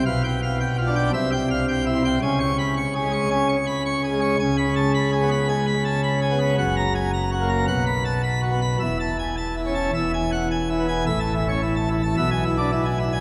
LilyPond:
<<
  \new Staff \with { instrumentName = "Pipe organ" } { \time 4/4 \key c \major \tempo 4 = 110 \tuplet 3/2 { f''8 g''8 f''8 g''8 f'8 g''8 e''8 g''8 f''8 g''8 e'8 g''8 } | \key a \major \tuplet 3/2 { gis''8 cis'''8 b''8 cis'''8 gis'8 cis'''8 gis''8 cis'''8 b''8 cis'''8 gis'8 cis'''8 } | \tuplet 3/2 { gis''8 b''8 a''8 b''8 gis'8 b''8 gis''8 b''8 a''8 b''8 gis'8 b''8 } | \tuplet 3/2 { fis''8 ais''8 gis''8 ais''8 fis'8 ais''8 fis''8 b''8 a''8 b''8 fis'8 b''8 } |
\tuplet 3/2 { e''8 a''8 gis''8 a''8 e'8 a''8 e''8 gis''8 fis''8 gis''8 e'8 gis''8 } | e''16 a''16 e'16 cis''16 e'16 a''16 e'16 a''16 e''16 gis''16 e'16 d''16 e'16 gis''16 e'16 gis''16 | }
  \new Staff \with { instrumentName = "Pipe organ" } { \clef bass \time 4/4 \key c \major << { b,4. d'8 c4. c'8 | \key a \major cis4. gis8 cis'8 r4 gis8 | cis4. b8 gis8 r4 b8 | fis,4. ais8 b,4. b8 |
e,4. cis'8 e,4. b8 | a,8. cis'16 r4 b,8. d'16 r4 | } \\ { b,,2 c,2 | cis,1 | cis,1 | fis,,2 b,,2 |
e,,2 e,,2 | a,,2 b,,2 | } >> }
>>